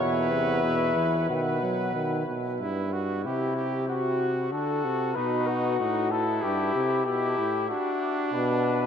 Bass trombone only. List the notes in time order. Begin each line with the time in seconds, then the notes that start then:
Already playing: E2
1.30 B2
2.61 G2
3.26 C3
4.53 D3
4.85 C3
5.17 B2
5.80 A2
6.43 G2
6.75 C3
7.06 B2
7.38 A2